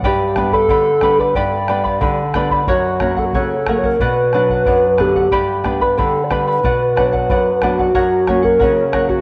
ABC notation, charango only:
X:1
M:2/4
L:1/16
Q:1/4=91
K:Bm
V:1 name="Charango"
[GBdgb]2 [Bdgb] [Bdb] [Bdgb]2 [Bdgb] [Bdb] | [GBdgb]2 [Bdgb] [Bdb] [Bdgb]2 [Bdgb] [Bdb] | [^Acf]2 [Acf] [cf] [cf]2 [Acf] [cf] | [Bdf]2 [Bdf] [df] [Bdf]2 [Bdf] [df] |
[GBdgb]2 [Bdgb] [Bdb] [Bdgb]2 [Bdgb] [Bdb] | [Bdf]2 [Bdf] [df] [Bdf]2 [Bdf] [df] | [^Acf]2 [Acf] [cf] [Acf]2 [Acf] [cf] |]